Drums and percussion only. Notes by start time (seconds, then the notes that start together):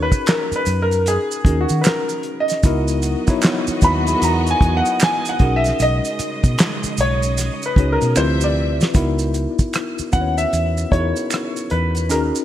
0.12 kick, closed hi-hat, maracas
0.26 finger snap, snare, clap, closed hi-hat, maracas
0.52 closed hi-hat, maracas
0.66 closed hi-hat, maracas
0.91 closed hi-hat, maracas
1.06 closed hi-hat, maracas
1.31 maracas
1.45 kick, closed hi-hat
1.69 closed hi-hat, maracas
1.84 finger snap, snare, clap, closed hi-hat, maracas
2.09 maracas
2.23 closed hi-hat
2.48 snare, closed hi-hat, maracas
2.63 kick, closed hi-hat, maracas
2.88 closed hi-hat, maracas
3.02 closed hi-hat, maracas
3.27 kick, closed hi-hat, maracas
3.42 finger snap, snare, clap, closed hi-hat, maracas
3.67 closed hi-hat, maracas
3.81 kick, closed hi-hat, maracas
4.07 closed hi-hat, maracas
4.22 closed hi-hat, maracas
4.47 closed hi-hat, maracas
4.61 kick, closed hi-hat
4.85 closed hi-hat, maracas
5.00 finger snap, snare, clap, closed hi-hat, maracas
5.25 closed hi-hat, maracas
5.39 kick, closed hi-hat
5.64 snare, closed hi-hat, maracas
5.79 closed hi-hat, maracas
6.05 closed hi-hat, maracas
6.19 closed hi-hat, maracas
6.44 kick, closed hi-hat, maracas
6.58 finger snap, snare, clap, closed hi-hat, maracas
6.84 maracas
6.97 closed hi-hat, maracas
7.22 closed hi-hat, maracas
7.38 snare, closed hi-hat, maracas
7.62 closed hi-hat, maracas
7.76 kick, closed hi-hat
8.01 closed hi-hat, maracas
8.16 finger snap, maracas
8.41 maracas
8.81 snare, maracas
8.94 kick, closed hi-hat, maracas
9.19 closed hi-hat, maracas
9.34 closed hi-hat, maracas
9.59 kick, closed hi-hat, maracas
9.73 finger snap, cross-stick, closed hi-hat, maracas
9.99 maracas
10.12 kick, closed hi-hat, maracas
10.38 closed hi-hat, maracas
10.53 closed hi-hat, maracas
10.77 maracas
10.92 kick, closed hi-hat
11.16 closed hi-hat, maracas
11.30 finger snap, cross-stick, closed hi-hat, maracas
11.56 closed hi-hat, maracas
11.70 closed hi-hat
11.95 closed hi-hat, maracas
12.10 closed hi-hat, maracas
12.35 maracas